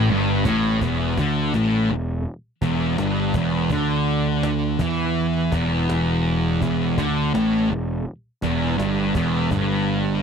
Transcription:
0.10 G1 G2
0.44 A1 A2, cajon bass
0.81 E1 E2, cajon bass
1.17 D2 D3, cajon bass
1.54 A1 A2, cajon slap
1.90 E1 E2
2.62 E1 E2, cajon bass
2.98 G1 G2, cajon slap
3.34 E1 E2, cajon bass
3.53 cajon slap
3.70 D2 D3, cajon bass
4.43 cajon slap
4.79 E2 E3, cajon bass
4.99 cajon slap
5.52 E1 E2, cajon bass
5.90 cajon slap
6.45 cajon slap
6.62 E1 E2, cajon bass
6.97 D2 D3, cajon bass
7.34 A1 A2, cajon slap
7.70 E1 E2
8.42 E1 E2, cajon bass
8.78 G1 G2, cajon slap
9.15 E1 E2, cajon bass
9.34 cajon slap
9.51 G1 G2, cajon bass

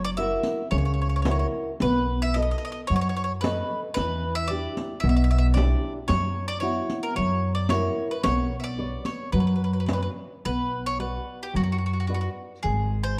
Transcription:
Already playing: F#1 F#3
0.04 D5
0.17 E4 F#4 A#4 E5
0.43 riq
0.71 C#2 C#3 C#5
0.78 C#5
0.85 C#5
0.94 C#5
1.02 C#5
1.09 C#5
1.16 C#5
1.22 E4 F#4 A#4 C#5, riq
1.31 C#5
1.39 C#5
1.80 B1 B3 B4, riq
2.22 E5
2.34 A4 B4 D#5, riq
2.42 D#5
2.51 D#5
2.58 D#5
2.65 D#5
2.72 D#5
2.87 F#2 F#3 C#5
2.96 C#5
3.01 C#5
3.09 C#5
3.16 C#5
3.24 C#5
3.41 A4 B4 D#5, riq
3.94 E2 E3 B4, riq
4.35 E5
4.48 D4 E4 G4 D5, riq
4.77 riq
5.00 B1 B2 E5
5.09 E5
5.16 E5
5.24 E5
5.31 E5
5.38 E5
5.54 D4 E4 G4 D5, riq
6.08 F#2 F#3 C#5, riq
6.48 D5
6.60 B3 E4 F#4 C#5, riq
6.90 riq
7.03 A#4
7.15 F#2 F#3 C#5
7.55 D5
7.69 E4 F#4 A#4 C#5, riq
8.11 B4
8.23 B1 B3 C#5, riq
8.60 E5
8.64 D5
8.78 B4 C#5 D5
9.05 C#5, riq
9.32 F#2 F#3 B4
9.40 B4
9.47 B4
9.56 B4
9.64 B4
9.73 B4
9.80 B4
9.86 B4 C#5 D5, riq
9.93 B4
10.02 B4
10.45 B1 B3 B4
10.86 C#5
10.99 F#4 B4 D5
11.43 G4
11.54 F#2 F#3 F#4
11.63 F#4
11.72 F#4
11.86 F#4
11.93 F#4
12.00 F#4
12.07 F#4 B4 D5
12.14 F#4
12.21 F#4
12.63 G#1 G#3 G#4
13.03 C5

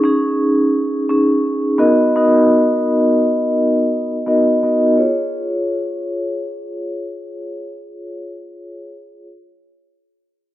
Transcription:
0.04 C#4 D#4 G#4
1.09 C#4 D#4 G#4
1.78 B3 D#4 F#4 A#4 D#5
2.16 B3 D#4 F#4 A#4 D#5
4.27 B3 D#4 F#4 A#4 D#5
4.63 B3 D#4 F#4 A#4 D#5
4.97 F4 G#4 C#5

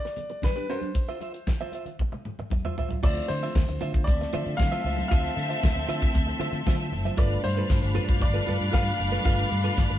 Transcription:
Already playing: D5
0.05 muted clean electric guitar stroke, snare, closed hi-hat, tambourine
0.16 closed hi-hat, tambourine, muted conga, low conga
0.30 muted clean electric guitar stroke, closed hi-hat, tambourine
0.42 B4, muted clean electric guitar stroke, kick, snare, tambourine, high conga
0.56 D4 G4 B4, closed hi-hat
0.69 D4 G4 B4 C5, closed hi-hat, tambourine
0.81 muted clean electric guitar stroke, closed hi-hat, tambourine, high conga
0.94 muted clean electric guitar stroke, kick, closed hi-hat, tambourine, muted conga
1.08 F4 C5 E5, closed hi-hat
1.21 F4 C5 E5, closed hi-hat, tambourine, muted conga
1.34 muted clean electric guitar stroke, closed hi-hat, tambourine
1.47 muted clean electric guitar stroke, kick, snare, tambourine, high conga
1.60 F4 C5 E5, closed hi-hat
1.72 F4 C5 E5, closed hi-hat, tambourine, muted conga
1.86 muted clean electric guitar stroke, closed hi-hat, low conga
1.99 muted clean electric guitar stroke, kick, high tom, low conga
2.12 muted clean electric guitar stroke, high tom, tambourine
2.24 mid tom, tambourine, muted conga, low conga
2.39 muted clean electric guitar stroke, mid tom
2.50 muted clean electric guitar stroke, kick, mid tom, tambourine, high conga
2.65 F4 C5 E5, mid tom
2.77 F4 C5 E5, floor tom, tambourine
2.89 muted clean electric guitar stroke, floor tom, tambourine, high conga
3.03 D2 E3 F3 A3 C4 F4 C5 D5 E5, kick, crash, tambourine, muted conga
3.07 D3
3.17 closed hi-hat
3.28 D3 C5, muted clean electric guitar stroke, closed hi-hat, tambourine, muted conga
3.42 F4 C5 E5, closed hi-hat, tambourine
3.55 D2, muted clean electric guitar stroke, kick, snare, tambourine, high conga
3.68 D2, muted clean electric guitar stroke, closed hi-hat
3.79 D3 F4 C5 E5, closed hi-hat, tambourine, muted conga
3.93 muted clean electric guitar stroke, kick, closed hi-hat, tambourine, low conga
4.04 D2 C4 A4 D5 E5, muted clean electric guitar stroke, kick
4.09 closed hi-hat
4.20 muted clean electric guitar stroke, snare, closed hi-hat, tambourine
4.32 D3 F4 C5 E5, closed hi-hat, tambourine, muted conga, low conga
4.46 D3, muted clean electric guitar stroke, closed hi-hat, tambourine
4.57 D3 F5, muted clean electric guitar stroke, kick, snare, tambourine, high conga
4.72 F4 C5 E5, closed hi-hat
4.84 C#2 F4 C5 E5, open hi-hat, tambourine
4.97 muted clean electric guitar stroke, closed hi-hat, high conga
5.08 D2 F4 C5 F5, kick, tambourine, muted conga
5.12 E5, closed hi-hat
5.26 closed hi-hat
5.36 D3, muted clean electric guitar stroke, closed hi-hat, tambourine, muted conga
5.49 F4 C5 E5, closed hi-hat, tambourine
5.62 D2, muted clean electric guitar stroke, kick, snare, tambourine, high conga
5.75 D2, muted clean electric guitar stroke, closed hi-hat
5.88 D3 F4 C5 E5, closed hi-hat, tambourine
6.01 muted clean electric guitar stroke, kick, closed hi-hat, tambourine
6.14 D2, muted clean electric guitar stroke, kick, closed hi-hat, low conga
6.26 muted clean electric guitar stroke, closed hi-hat, tambourine
6.39 D3 F4 C5 E5, closed hi-hat, tambourine, muted conga
6.52 D3, muted clean electric guitar stroke, closed hi-hat
6.65 D3 F4 C5 E5, kick, snare, tambourine, high conga
6.79 muted clean electric guitar stroke, closed hi-hat
6.92 F#1, muted clean electric guitar stroke, open hi-hat, tambourine
7.05 F4 C5 E5, closed hi-hat, tambourine, high conga
7.17 G1 B2 D3 G3 D4 F4 A4 B4 D5 F5 B5, kick, closed hi-hat, tambourine, muted conga
7.31 closed hi-hat
7.43 G2 C5, muted clean electric guitar stroke, closed hi-hat, tambourine, muted conga
7.57 F4 A4 B4, closed hi-hat, tambourine
7.70 G1, muted clean electric guitar stroke, kick, snare, tambourine, high conga
7.82 G1, muted clean electric guitar stroke, closed hi-hat
7.95 G2 F4 A4 B4, closed hi-hat, tambourine
8.08 muted clean electric guitar stroke, kick, closed hi-hat, low conga
8.20 G1 D5, muted clean electric guitar stroke, kick, closed hi-hat
8.34 F4 A4 B4, closed hi-hat, tambourine
8.47 G2 F4 A4 B4, closed hi-hat, tambourine, muted conga, low conga
8.60 G2, muted clean electric guitar stroke, closed hi-hat
8.72 G2 F4 A4 B4 F5, kick, snare, tambourine, high conga
8.86 muted clean electric guitar stroke, closed hi-hat
9.00 F#1, muted clean electric guitar stroke, open hi-hat, tambourine
9.12 F4 A4 B4, closed hi-hat, tambourine, high conga
9.25 G1 F4 A4 B4 F5, kick, closed hi-hat, tambourine, muted conga
9.39 closed hi-hat
9.51 G2, muted clean electric guitar stroke, closed hi-hat, tambourine, muted conga
9.64 F4 A4 B4, closed hi-hat
9.77 G1, muted clean electric guitar stroke, kick, snare, tambourine, high conga
9.90 G1, muted clean electric guitar stroke, closed hi-hat

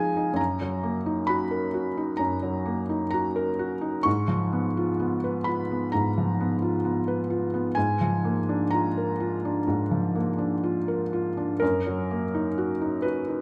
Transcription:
Already playing: F3 G#3 D#4 G#4 D#5 F5 G#5
0.17 D#4
0.33 F#2 A#5
0.61 F#3
0.83 A#3
1.06 D#4
1.27 F#4 B5
1.51 A#4
1.74 F#4
1.97 D#4
2.17 F#2 A#5
2.43 F#3
2.66 A#3
2.89 D#4
3.11 F#4 A#5
3.36 A#4
3.59 F#4
3.81 D#4
4.03 G#2 C#6
4.28 F3
4.52 B3
4.77 F4
4.99 B3
5.24 B4
5.44 F4 B5
5.71 B3
5.92 G#2 A#5
6.18 F3
6.41 B3
6.62 F4
6.85 B3
7.08 B4
7.30 F4
7.54 B3
7.75 G#2 G#5
8.01 F3
8.25 A#3
8.49 D4
8.71 F4 A#5
8.97 A#4
9.20 F4
9.45 D4
9.67 G#2
9.91 F3
10.15 A#3
10.38 D4
10.63 F4
10.88 A#4
11.13 F4
11.37 D4
11.60 F#2 A#4
11.87 F#3
12.11 A#3
12.34 D#4
12.58 F#4
12.82 D#4
13.02 F#4 B4
13.28 D#4

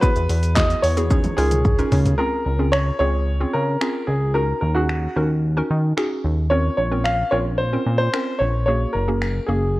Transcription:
0.01 B3 E4 F#4 G#4 B4, kick, shaker
0.16 E2, closed hi-hat, shaker
0.30 E2, open hi-hat, shaker
0.43 closed hi-hat, shaker
0.55 B3 E4 F#4 G#4 D#5, kick, snare, clap, shaker
0.70 closed hi-hat, shaker
0.83 E2 C#5, open hi-hat, shaker
0.97 B3 E4 F#4 G#4, closed hi-hat, shaker
1.11 C#4 D#4 F4 G#4, kick, high tom, shaker
1.24 closed hi-hat, high tom, shaker
1.37 C#2 C#4 D#4 F4 G#4 A#4, open hi-hat, shaker
1.51 closed hi-hat, mid tom, shaker
1.65 kick, mid tom, shaker
1.78 C#4 D#4 F4 A#4, closed hi-hat, shaker
1.92 C#3, floor tom, open hi-hat, shaker
2.06 closed hi-hat, floor tom, shaker
2.18 C4 C#4 F4 G#4 A#4
2.46 C#2
2.59 C4 C#4 F4 G#4
2.72 C#5, finger snap
2.99 C#2 C4 C#4 F4 G#4 C#5
3.40 C4 C#4 F4 G#4
3.53 C#3 A#4
3.81 C4 C#4 F4 G#4, finger snap
4.07 C#2 G#4
4.34 C#4 D#4 F#4 A#4
4.61 D#2 A#4
4.75 C#4 D#4 F#4 G#4
4.89 finger snap
5.16 D#2 C#4 D#4 F#4 A#4
5.57 C#4 D#4 F#4 A#4
5.70 D#3
5.97 C#4 D#4 F#4 G#4, finger snap
6.25 D#2
6.50 C4 C#4 F4 A#4 C#5
6.77 A#1 C#5
6.92 C4 C#4 F4 A#4
7.04 F5, finger snap
7.31 A#1 C4 C#4 F4 A#4 C#5
7.58 C5
7.73 C4 C#4 F4 A#4
7.87 A#2
7.98 C5
8.13 C4 C#4 F4 A#4, finger snap
8.39 A#1 C#5
8.66 A#3 C#4 F#4 G#4 C#5
8.93 F#1 A#4
9.08 A#3 C#4 F#4 G#4
9.22 finger snap
9.47 F#1 A#3 C#4 F#4 G#4

